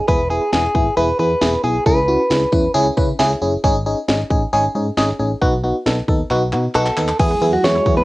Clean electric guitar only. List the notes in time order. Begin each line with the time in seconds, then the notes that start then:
0.08 B4
0.30 G#4
0.53 G#4
0.97 B4
1.20 B4
1.64 G#4
1.86 B4
6.75 A4
7.20 G#4
7.53 F#4
7.64 C#5
7.97 B4